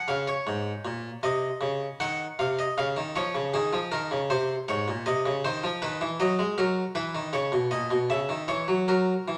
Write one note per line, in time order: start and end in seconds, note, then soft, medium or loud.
0.08 0.32 C#3 medium
0.08 0.27 F5 medium
0.27 1.21 C#5 medium
0.47 0.71 G#2 medium
0.85 1.09 A#2 medium
1.23 1.47 C3 medium
1.23 1.98 D#5 medium
1.61 1.85 C#3 medium
2.00 2.24 D#3 medium
2.00 2.24 F#5 medium
2.39 2.63 C3 medium
2.39 2.58 F5 medium
2.59 2.77 D#5 medium
2.78 2.96 C#3 medium
2.78 3.01 F5 medium
2.96 3.15 D#3 medium
3.16 3.34 F3 medium
3.16 3.39 C#5 medium
3.35 3.53 C#3 medium
3.54 3.72 D#3 medium
3.54 3.77 G#4 medium
3.73 3.91 F3 medium
3.92 4.10 D#3 medium
3.92 4.15 A#4 medium
4.11 4.30 C#3 medium
4.30 4.54 C3 medium
4.30 4.54 C5 medium
4.68 4.87 G#2 medium
4.68 4.92 C#5 medium
4.88 5.06 A#2 medium
5.06 5.25 C3 medium
5.06 5.30 D#5 medium
5.26 5.44 C#3 medium
5.45 5.63 D#3 medium
5.45 5.68 C5 medium
5.64 5.82 F3 medium
5.82 6.01 D#3 medium
5.82 6.06 B4 medium
6.01 6.20 E3 medium
6.20 6.38 F#3 medium
6.20 6.43 D#5 medium
6.39 6.57 G#3 medium
6.58 6.81 F#3 medium
6.58 6.81 A#4 medium
6.95 7.14 E3 medium
6.95 7.19 B4 medium
7.15 7.33 D#3 medium
7.33 7.52 C#3 medium
7.33 7.57 C#5 medium
7.52 7.71 B2 medium
7.71 7.90 A#2 medium
7.71 7.95 D#5 medium
7.91 8.09 B2 medium
8.10 8.29 C#3 medium
8.10 8.34 E5 medium
8.29 8.48 D#3 medium
8.48 8.67 E3 medium
8.48 8.73 C#5 medium
8.68 8.87 F#3 medium
8.88 9.12 F#3 medium
8.88 9.38 A#4 medium
9.28 9.38 E3 medium